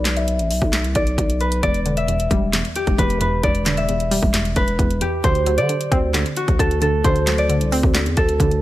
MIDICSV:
0, 0, Header, 1, 5, 480
1, 0, Start_track
1, 0, Key_signature, 1, "minor"
1, 0, Tempo, 451128
1, 1735, Time_signature, 4, 2, 24, 8
1, 9171, End_track
2, 0, Start_track
2, 0, Title_t, "Harp"
2, 0, Program_c, 0, 46
2, 0, Note_on_c, 0, 66, 72
2, 0, Note_on_c, 0, 71, 78
2, 0, Note_on_c, 0, 74, 94
2, 175, Note_on_c, 0, 76, 72
2, 1010, Note_off_c, 0, 74, 0
2, 1014, Note_on_c, 0, 74, 74
2, 1491, Note_off_c, 0, 71, 0
2, 1495, Note_on_c, 0, 71, 71
2, 1689, Note_off_c, 0, 66, 0
2, 1730, Note_off_c, 0, 74, 0
2, 1735, Note_on_c, 0, 74, 115
2, 2008, Note_off_c, 0, 76, 0
2, 2096, Note_on_c, 0, 76, 77
2, 2935, Note_on_c, 0, 67, 71
2, 3171, Note_off_c, 0, 71, 0
2, 3176, Note_on_c, 0, 71, 91
2, 3413, Note_off_c, 0, 71, 0
2, 3417, Note_on_c, 0, 71, 72
2, 3651, Note_off_c, 0, 74, 0
2, 3655, Note_on_c, 0, 74, 94
2, 3929, Note_off_c, 0, 76, 0
2, 4015, Note_on_c, 0, 76, 74
2, 4851, Note_off_c, 0, 71, 0
2, 4856, Note_on_c, 0, 71, 87
2, 5331, Note_off_c, 0, 67, 0
2, 5335, Note_on_c, 0, 67, 76
2, 5575, Note_on_c, 0, 72, 105
2, 5620, Note_off_c, 0, 74, 0
2, 5639, Note_off_c, 0, 71, 0
2, 5849, Note_off_c, 0, 76, 0
2, 5934, Note_on_c, 0, 74, 83
2, 6776, Note_on_c, 0, 66, 71
2, 6839, Note_off_c, 0, 67, 0
2, 7016, Note_on_c, 0, 69, 87
2, 7252, Note_off_c, 0, 69, 0
2, 7256, Note_on_c, 0, 69, 74
2, 7492, Note_off_c, 0, 72, 0
2, 7496, Note_on_c, 0, 72, 97
2, 7851, Note_off_c, 0, 74, 0
2, 7856, Note_on_c, 0, 74, 77
2, 8691, Note_off_c, 0, 69, 0
2, 8695, Note_on_c, 0, 69, 76
2, 9171, Note_off_c, 0, 66, 0
2, 9171, Note_off_c, 0, 69, 0
2, 9171, Note_off_c, 0, 72, 0
2, 9171, Note_off_c, 0, 74, 0
2, 9171, End_track
3, 0, Start_track
3, 0, Title_t, "Synth pluck"
3, 0, Program_c, 1, 84
3, 1735, Note_on_c, 1, 40, 87
3, 1976, Note_on_c, 1, 50, 76
3, 2201, Note_off_c, 1, 40, 0
3, 2214, Note_on_c, 1, 40, 79
3, 2456, Note_on_c, 1, 55, 93
3, 2681, Note_off_c, 1, 40, 0
3, 2693, Note_on_c, 1, 40, 77
3, 3162, Note_off_c, 1, 40, 0
3, 3175, Note_on_c, 1, 40, 94
3, 3176, Note_off_c, 1, 50, 0
3, 3401, Note_off_c, 1, 40, 0
3, 3414, Note_on_c, 1, 40, 75
3, 3643, Note_off_c, 1, 40, 0
3, 3656, Note_off_c, 1, 55, 0
3, 3656, Note_on_c, 1, 40, 86
3, 3895, Note_on_c, 1, 50, 81
3, 4122, Note_off_c, 1, 40, 0
3, 4135, Note_on_c, 1, 40, 78
3, 4375, Note_on_c, 1, 55, 92
3, 4601, Note_off_c, 1, 40, 0
3, 4614, Note_on_c, 1, 40, 79
3, 5080, Note_off_c, 1, 40, 0
3, 5092, Note_on_c, 1, 40, 89
3, 5095, Note_off_c, 1, 50, 0
3, 5319, Note_off_c, 1, 40, 0
3, 5332, Note_on_c, 1, 40, 71
3, 5573, Note_on_c, 1, 50, 83
3, 5574, Note_off_c, 1, 40, 0
3, 5575, Note_off_c, 1, 55, 0
3, 5816, Note_on_c, 1, 54, 76
3, 6043, Note_off_c, 1, 50, 0
3, 6056, Note_on_c, 1, 50, 72
3, 6294, Note_on_c, 1, 60, 104
3, 6520, Note_off_c, 1, 50, 0
3, 6533, Note_on_c, 1, 50, 80
3, 7000, Note_off_c, 1, 50, 0
3, 7013, Note_on_c, 1, 50, 88
3, 7016, Note_off_c, 1, 54, 0
3, 7239, Note_off_c, 1, 50, 0
3, 7252, Note_on_c, 1, 50, 77
3, 7480, Note_off_c, 1, 50, 0
3, 7493, Note_on_c, 1, 50, 93
3, 7494, Note_off_c, 1, 60, 0
3, 7735, Note_on_c, 1, 54, 70
3, 7960, Note_off_c, 1, 50, 0
3, 7973, Note_on_c, 1, 50, 82
3, 8215, Note_on_c, 1, 60, 94
3, 8440, Note_off_c, 1, 50, 0
3, 8453, Note_on_c, 1, 50, 75
3, 8921, Note_off_c, 1, 50, 0
3, 8934, Note_on_c, 1, 50, 92
3, 8935, Note_off_c, 1, 54, 0
3, 9162, Note_off_c, 1, 50, 0
3, 9171, Note_off_c, 1, 60, 0
3, 9171, End_track
4, 0, Start_track
4, 0, Title_t, "808-style bass"
4, 0, Program_c, 2, 38
4, 0, Note_on_c, 2, 35, 106
4, 416, Note_on_c, 2, 33, 100
4, 432, Note_off_c, 2, 35, 0
4, 536, Note_on_c, 2, 35, 103
4, 552, Note_off_c, 2, 33, 0
4, 650, Note_off_c, 2, 35, 0
4, 656, Note_on_c, 2, 35, 110
4, 895, Note_on_c, 2, 36, 100
4, 911, Note_off_c, 2, 35, 0
4, 1009, Note_off_c, 2, 36, 0
4, 1015, Note_on_c, 2, 35, 105
4, 1246, Note_off_c, 2, 35, 0
4, 1256, Note_on_c, 2, 35, 104
4, 1716, Note_off_c, 2, 35, 0
4, 1735, Note_on_c, 2, 28, 110
4, 2426, Note_off_c, 2, 28, 0
4, 2455, Note_on_c, 2, 28, 110
4, 2801, Note_off_c, 2, 28, 0
4, 3055, Note_on_c, 2, 28, 107
4, 3171, Note_off_c, 2, 28, 0
4, 3175, Note_on_c, 2, 28, 110
4, 3636, Note_off_c, 2, 28, 0
4, 3655, Note_on_c, 2, 28, 113
4, 4462, Note_off_c, 2, 28, 0
4, 4496, Note_on_c, 2, 28, 102
4, 4841, Note_off_c, 2, 28, 0
4, 4855, Note_on_c, 2, 28, 108
4, 5086, Note_off_c, 2, 28, 0
4, 5095, Note_on_c, 2, 28, 107
4, 5326, Note_off_c, 2, 28, 0
4, 5575, Note_on_c, 2, 38, 108
4, 5934, Note_on_c, 2, 50, 100
4, 5950, Note_off_c, 2, 38, 0
4, 6049, Note_off_c, 2, 50, 0
4, 6295, Note_on_c, 2, 38, 107
4, 6641, Note_off_c, 2, 38, 0
4, 6895, Note_on_c, 2, 38, 104
4, 7010, Note_off_c, 2, 38, 0
4, 7015, Note_on_c, 2, 38, 105
4, 7476, Note_off_c, 2, 38, 0
4, 7495, Note_on_c, 2, 38, 108
4, 8095, Note_on_c, 2, 36, 98
4, 8111, Note_off_c, 2, 38, 0
4, 8215, Note_on_c, 2, 38, 102
4, 8231, Note_off_c, 2, 36, 0
4, 8329, Note_off_c, 2, 38, 0
4, 8335, Note_on_c, 2, 38, 106
4, 8575, Note_on_c, 2, 40, 98
4, 8591, Note_off_c, 2, 38, 0
4, 8689, Note_off_c, 2, 40, 0
4, 8695, Note_on_c, 2, 38, 109
4, 8926, Note_off_c, 2, 38, 0
4, 8935, Note_on_c, 2, 38, 102
4, 9171, Note_off_c, 2, 38, 0
4, 9171, End_track
5, 0, Start_track
5, 0, Title_t, "Drums"
5, 54, Note_on_c, 9, 42, 78
5, 56, Note_on_c, 9, 38, 95
5, 59, Note_on_c, 9, 39, 76
5, 161, Note_off_c, 9, 42, 0
5, 162, Note_off_c, 9, 38, 0
5, 165, Note_off_c, 9, 39, 0
5, 176, Note_on_c, 9, 42, 57
5, 282, Note_off_c, 9, 42, 0
5, 296, Note_on_c, 9, 42, 70
5, 402, Note_off_c, 9, 42, 0
5, 418, Note_on_c, 9, 42, 59
5, 525, Note_off_c, 9, 42, 0
5, 538, Note_on_c, 9, 46, 83
5, 645, Note_off_c, 9, 46, 0
5, 656, Note_on_c, 9, 36, 98
5, 762, Note_off_c, 9, 36, 0
5, 775, Note_on_c, 9, 38, 108
5, 778, Note_on_c, 9, 39, 86
5, 779, Note_on_c, 9, 42, 83
5, 882, Note_off_c, 9, 38, 0
5, 885, Note_off_c, 9, 39, 0
5, 886, Note_off_c, 9, 42, 0
5, 898, Note_on_c, 9, 42, 58
5, 1004, Note_off_c, 9, 42, 0
5, 1012, Note_on_c, 9, 42, 77
5, 1015, Note_on_c, 9, 36, 100
5, 1119, Note_off_c, 9, 42, 0
5, 1122, Note_off_c, 9, 36, 0
5, 1137, Note_on_c, 9, 42, 54
5, 1243, Note_off_c, 9, 42, 0
5, 1255, Note_on_c, 9, 36, 95
5, 1261, Note_on_c, 9, 42, 81
5, 1362, Note_off_c, 9, 36, 0
5, 1367, Note_off_c, 9, 42, 0
5, 1379, Note_on_c, 9, 42, 53
5, 1486, Note_off_c, 9, 42, 0
5, 1495, Note_on_c, 9, 42, 52
5, 1602, Note_off_c, 9, 42, 0
5, 1615, Note_on_c, 9, 42, 82
5, 1722, Note_off_c, 9, 42, 0
5, 1735, Note_on_c, 9, 36, 113
5, 1736, Note_on_c, 9, 42, 80
5, 1842, Note_off_c, 9, 36, 0
5, 1842, Note_off_c, 9, 42, 0
5, 1855, Note_on_c, 9, 42, 54
5, 1961, Note_off_c, 9, 42, 0
5, 1975, Note_on_c, 9, 42, 80
5, 2081, Note_off_c, 9, 42, 0
5, 2096, Note_on_c, 9, 42, 58
5, 2203, Note_off_c, 9, 42, 0
5, 2217, Note_on_c, 9, 42, 72
5, 2323, Note_off_c, 9, 42, 0
5, 2338, Note_on_c, 9, 42, 59
5, 2445, Note_off_c, 9, 42, 0
5, 2455, Note_on_c, 9, 36, 105
5, 2459, Note_on_c, 9, 42, 86
5, 2562, Note_off_c, 9, 36, 0
5, 2565, Note_off_c, 9, 42, 0
5, 2696, Note_on_c, 9, 38, 106
5, 2699, Note_on_c, 9, 39, 87
5, 2700, Note_on_c, 9, 42, 80
5, 2802, Note_off_c, 9, 38, 0
5, 2805, Note_off_c, 9, 39, 0
5, 2806, Note_off_c, 9, 42, 0
5, 2819, Note_on_c, 9, 42, 57
5, 2925, Note_off_c, 9, 42, 0
5, 2932, Note_on_c, 9, 42, 76
5, 3038, Note_off_c, 9, 42, 0
5, 3055, Note_on_c, 9, 36, 93
5, 3056, Note_on_c, 9, 42, 54
5, 3161, Note_off_c, 9, 36, 0
5, 3162, Note_off_c, 9, 42, 0
5, 3175, Note_on_c, 9, 36, 95
5, 3181, Note_on_c, 9, 42, 79
5, 3281, Note_off_c, 9, 36, 0
5, 3288, Note_off_c, 9, 42, 0
5, 3299, Note_on_c, 9, 42, 53
5, 3406, Note_off_c, 9, 42, 0
5, 3412, Note_on_c, 9, 42, 82
5, 3518, Note_off_c, 9, 42, 0
5, 3655, Note_on_c, 9, 36, 117
5, 3655, Note_on_c, 9, 42, 80
5, 3761, Note_off_c, 9, 36, 0
5, 3761, Note_off_c, 9, 42, 0
5, 3774, Note_on_c, 9, 42, 54
5, 3880, Note_off_c, 9, 42, 0
5, 3894, Note_on_c, 9, 42, 76
5, 3895, Note_on_c, 9, 38, 91
5, 3898, Note_on_c, 9, 39, 77
5, 4000, Note_off_c, 9, 42, 0
5, 4002, Note_off_c, 9, 38, 0
5, 4005, Note_off_c, 9, 39, 0
5, 4015, Note_on_c, 9, 42, 56
5, 4122, Note_off_c, 9, 42, 0
5, 4135, Note_on_c, 9, 42, 75
5, 4241, Note_off_c, 9, 42, 0
5, 4257, Note_on_c, 9, 42, 58
5, 4364, Note_off_c, 9, 42, 0
5, 4378, Note_on_c, 9, 46, 84
5, 4484, Note_off_c, 9, 46, 0
5, 4496, Note_on_c, 9, 36, 103
5, 4602, Note_off_c, 9, 36, 0
5, 4615, Note_on_c, 9, 38, 106
5, 4618, Note_on_c, 9, 39, 86
5, 4619, Note_on_c, 9, 42, 82
5, 4721, Note_off_c, 9, 38, 0
5, 4725, Note_off_c, 9, 39, 0
5, 4726, Note_off_c, 9, 42, 0
5, 4738, Note_on_c, 9, 42, 56
5, 4844, Note_off_c, 9, 42, 0
5, 4852, Note_on_c, 9, 42, 76
5, 4855, Note_on_c, 9, 36, 101
5, 4959, Note_off_c, 9, 42, 0
5, 4961, Note_off_c, 9, 36, 0
5, 4977, Note_on_c, 9, 42, 54
5, 5083, Note_off_c, 9, 42, 0
5, 5095, Note_on_c, 9, 36, 93
5, 5101, Note_on_c, 9, 42, 83
5, 5202, Note_off_c, 9, 36, 0
5, 5207, Note_off_c, 9, 42, 0
5, 5219, Note_on_c, 9, 42, 52
5, 5325, Note_off_c, 9, 42, 0
5, 5332, Note_on_c, 9, 42, 83
5, 5438, Note_off_c, 9, 42, 0
5, 5575, Note_on_c, 9, 36, 117
5, 5575, Note_on_c, 9, 42, 82
5, 5681, Note_off_c, 9, 36, 0
5, 5682, Note_off_c, 9, 42, 0
5, 5694, Note_on_c, 9, 42, 52
5, 5800, Note_off_c, 9, 42, 0
5, 5814, Note_on_c, 9, 42, 74
5, 5920, Note_off_c, 9, 42, 0
5, 5935, Note_on_c, 9, 42, 59
5, 6042, Note_off_c, 9, 42, 0
5, 6056, Note_on_c, 9, 42, 69
5, 6162, Note_off_c, 9, 42, 0
5, 6178, Note_on_c, 9, 42, 59
5, 6285, Note_off_c, 9, 42, 0
5, 6295, Note_on_c, 9, 36, 104
5, 6298, Note_on_c, 9, 42, 83
5, 6401, Note_off_c, 9, 36, 0
5, 6405, Note_off_c, 9, 42, 0
5, 6536, Note_on_c, 9, 38, 107
5, 6539, Note_on_c, 9, 39, 82
5, 6540, Note_on_c, 9, 42, 81
5, 6642, Note_off_c, 9, 38, 0
5, 6645, Note_off_c, 9, 39, 0
5, 6646, Note_off_c, 9, 42, 0
5, 6659, Note_on_c, 9, 42, 58
5, 6765, Note_off_c, 9, 42, 0
5, 6773, Note_on_c, 9, 42, 76
5, 6879, Note_off_c, 9, 42, 0
5, 6895, Note_on_c, 9, 36, 92
5, 6896, Note_on_c, 9, 42, 55
5, 7001, Note_off_c, 9, 36, 0
5, 7003, Note_off_c, 9, 42, 0
5, 7015, Note_on_c, 9, 36, 94
5, 7021, Note_on_c, 9, 42, 82
5, 7121, Note_off_c, 9, 36, 0
5, 7128, Note_off_c, 9, 42, 0
5, 7140, Note_on_c, 9, 42, 52
5, 7247, Note_off_c, 9, 42, 0
5, 7253, Note_on_c, 9, 42, 82
5, 7359, Note_off_c, 9, 42, 0
5, 7495, Note_on_c, 9, 36, 117
5, 7496, Note_on_c, 9, 42, 81
5, 7601, Note_off_c, 9, 36, 0
5, 7602, Note_off_c, 9, 42, 0
5, 7615, Note_on_c, 9, 42, 52
5, 7721, Note_off_c, 9, 42, 0
5, 7734, Note_on_c, 9, 42, 76
5, 7736, Note_on_c, 9, 38, 91
5, 7739, Note_on_c, 9, 39, 77
5, 7841, Note_off_c, 9, 42, 0
5, 7842, Note_off_c, 9, 38, 0
5, 7845, Note_off_c, 9, 39, 0
5, 7855, Note_on_c, 9, 42, 58
5, 7961, Note_off_c, 9, 42, 0
5, 7975, Note_on_c, 9, 42, 71
5, 8082, Note_off_c, 9, 42, 0
5, 8097, Note_on_c, 9, 42, 61
5, 8204, Note_off_c, 9, 42, 0
5, 8218, Note_on_c, 9, 46, 85
5, 8324, Note_off_c, 9, 46, 0
5, 8335, Note_on_c, 9, 36, 105
5, 8441, Note_off_c, 9, 36, 0
5, 8454, Note_on_c, 9, 38, 107
5, 8457, Note_on_c, 9, 39, 86
5, 8458, Note_on_c, 9, 42, 81
5, 8560, Note_off_c, 9, 38, 0
5, 8563, Note_off_c, 9, 39, 0
5, 8564, Note_off_c, 9, 42, 0
5, 8578, Note_on_c, 9, 42, 59
5, 8684, Note_off_c, 9, 42, 0
5, 8692, Note_on_c, 9, 42, 75
5, 8695, Note_on_c, 9, 36, 100
5, 8798, Note_off_c, 9, 42, 0
5, 8801, Note_off_c, 9, 36, 0
5, 8817, Note_on_c, 9, 42, 54
5, 8923, Note_off_c, 9, 42, 0
5, 8935, Note_on_c, 9, 36, 89
5, 8941, Note_on_c, 9, 42, 82
5, 9041, Note_off_c, 9, 36, 0
5, 9047, Note_off_c, 9, 42, 0
5, 9059, Note_on_c, 9, 42, 52
5, 9166, Note_off_c, 9, 42, 0
5, 9171, End_track
0, 0, End_of_file